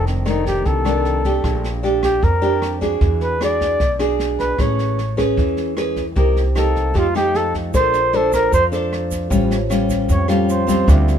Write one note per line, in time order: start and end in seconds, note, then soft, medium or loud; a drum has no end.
0.00 0.61 F1 loud
0.00 0.63 F2 medium
0.00 0.23 D#3 medium
0.00 0.23 A3 medium
0.00 0.23 D4 medium
0.07 0.24 C4 soft
0.07 snare soft
0.25 0.81 D#3 medium
0.25 0.82 A3 medium
0.25 0.82 D4 medium
0.25 0.47 D#4 medium
0.25 cross-stick medium
0.25 snare soft
0.46 0.68 G4 medium
0.46 kick soft
0.46 snare soft
0.65 1.40 C2 medium
0.65 1.42 C3 soft
0.65 1.84 A4 medium
0.65 kick medium
0.65 snare soft
0.85 1.21 D#3 medium
0.85 1.21 A3 medium
0.85 1.21 D4 medium
0.85 cross-stick medium
0.85 snare soft
1.05 snare soft
1.24 1.80 A3 medium
1.24 1.81 D4 medium
1.24 1.81 G4 medium
1.24 kick soft
1.24 snare soft
1.44 2.19 A#1 loud
1.44 2.21 A#2 medium
1.44 kick medium
1.44 cross-stick medium
1.44 snare soft
1.64 snare soft
1.83 2.22 A3 medium
1.83 2.22 D4 medium
1.83 2.23 G4 medium
1.83 snare soft
2.03 2.25 G4 medium
2.03 kick soft
2.03 cross-stick medium
2.03 snare soft
2.22 2.99 F2 soft
2.22 2.97 F2 medium
2.22 2.82 A#4 medium
2.22 kick medium
2.22 snare soft
2.42 2.78 D4 medium
2.42 2.78 G4 medium
2.42 snare soft
2.62 cross-stick medium
2.62 snare soft
2.81 3.37 D4 medium
2.81 3.37 F#4 medium
2.81 3.37 G#4 medium
2.81 kick soft
2.81 snare soft
3.01 3.76 E2 loud
3.01 3.78 E3 soft
3.01 kick medium
3.01 snare soft
3.21 3.45 B4 medium
3.21 snare soft
3.41 3.80 D4 medium
3.41 3.80 F#4 soft
3.41 3.80 G#4 medium
3.41 4.01 D5 loud
3.41 cross-stick medium
3.41 snare soft
3.60 kick soft
3.60 snare soft
3.80 4.55 B1 medium
3.80 4.57 B2 soft
3.80 kick medium
3.80 snare soft
3.99 4.55 D4 medium
3.99 4.55 F#4 medium
3.99 4.56 G#4 medium
3.99 cross-stick medium
3.99 snare soft
4.19 snare soft
4.39 4.63 B4 medium
4.39 kick soft
4.39 snare soft
4.58 5.33 A1 loud
4.58 5.36 A3 soft
4.58 4.98 C#4 medium
4.58 4.98 G#4 medium
4.58 4.98 B4 medium
4.58 5.19 C#5 medium
4.58 kick medium
4.58 cross-stick medium
4.58 snare soft
4.79 snare soft
4.99 snare soft
5.17 5.73 C#4 medium
5.17 5.73 G#4 medium
5.17 5.74 B4 medium
5.17 kick soft
5.17 cross-stick medium
5.17 snare soft
5.37 6.12 E2 medium
5.37 6.14 E3 medium
5.37 kick medium
5.37 snare soft
5.57 snare soft
5.77 6.03 C#4 medium
5.77 6.03 G#4 medium
5.77 6.03 B4 medium
5.77 cross-stick medium
5.77 snare soft
5.96 kick soft
5.96 snare soft
6.16 6.91 C2 loud
6.16 6.92 C3 medium
6.16 6.41 A#3 medium
6.16 6.41 D#4 medium
6.16 6.42 G4 medium
6.16 kick medium
6.16 snare soft
6.36 snare soft
6.55 6.91 A#3 medium
6.55 6.91 D#4 soft
6.55 6.92 G4 medium
6.55 6.99 A4 medium
6.55 cross-stick medium
6.55 snare soft
6.76 kick soft
6.76 snare soft
6.94 7.70 F2 loud
6.94 7.71 F3 medium
6.94 7.06 A3 soft
6.94 7.06 D#4 soft
6.94 7.06 G4 medium
6.94 kick medium
6.94 snare soft
6.98 7.15 F4 medium
7.15 7.70 A3 medium
7.15 7.70 D#4 medium
7.15 7.71 G4 medium
7.15 7.38 G4 loud
7.15 cross-stick medium
7.15 snare soft
7.35 7.55 A4 medium
7.35 snare soft
7.54 kick soft
7.54 snare soft
7.71 8.48 A#1 loud
7.71 8.50 A#3 medium
7.71 7.99 D4 soft
7.71 9.26 F4 soft
7.71 9.27 A4 soft
7.71 7.99 A4 medium
7.71 7.99 C5 medium
7.71 kick medium
7.71 cross-stick medium
7.71 snare soft
7.71 shaker medium
7.75 9.28 C5 soft
7.75 8.18 C5 loud
7.75 9.29 D5 medium
7.94 snare soft
7.94 shaker soft
8.13 8.52 D4 medium
8.13 8.52 A4 medium
8.13 8.33 A4 medium
8.13 8.53 C5 medium
8.13 snare soft
8.33 8.51 A#4 loud
8.33 kick soft
8.33 cross-stick medium
8.33 snare soft
8.33 shaker medium
8.52 9.27 F2 medium
8.52 9.29 F3 medium
8.52 8.65 C5 medium
8.52 kick medium
8.52 snare soft
8.52 shaker medium
8.72 9.28 D4 medium
8.72 9.28 A4 medium
8.72 9.28 C5 medium
8.72 snare soft
8.72 shaker soft
8.93 cross-stick medium
8.93 snare soft
9.11 kick soft
9.11 snare soft
9.11 shaker medium
9.28 10.05 A1 loud
9.28 10.07 A2 medium
9.28 9.56 G3 medium
9.28 9.56 C#4 medium
9.28 10.26 F4 medium
9.28 9.56 F4 medium
9.28 10.27 G4 medium
9.28 10.27 C5 medium
9.28 kick medium
9.28 snare soft
9.28 shaker medium
9.34 10.28 C#5 medium
9.51 snare soft
9.51 shaker soft
9.70 10.26 G3 medium
9.70 10.26 C#4 medium
9.70 10.26 F4 medium
9.70 cross-stick medium
9.70 snare soft
9.70 shaker medium
9.90 kick soft
9.90 snare soft
9.90 shaker medium
10.08 10.84 F2 medium
10.08 10.85 A2 medium
10.08 10.29 C#5 medium
10.08 kick medium
10.08 snare soft
10.08 shaker medium
10.27 10.65 G3 medium
10.27 10.65 C#4 medium
10.27 10.89 C#4 soft
10.27 10.83 F4 soft
10.27 10.65 F4 medium
10.27 10.85 G4 soft
10.27 10.46 A4 medium
10.27 10.88 C5 soft
10.27 cross-stick medium
10.27 snare soft
10.27 shaker soft
10.49 10.91 C5 medium
10.49 snare soft
10.49 shaker medium
10.67 11.19 G3 medium
10.67 11.19 C4 medium
10.67 11.19 F4 medium
10.67 kick soft
10.67 snare soft
10.67 shaker medium
10.85 11.19 D2 loud
10.85 11.19 D3 medium
10.85 11.19 F4 soft
10.85 11.19 G4 soft
10.85 kick medium
10.85 cross-stick medium
10.85 snare soft
10.89 11.08 G4 medium
10.89 11.19 C5 soft
10.89 11.19 E5 medium
10.89 shaker medium
11.08 snare soft
11.08 shaker soft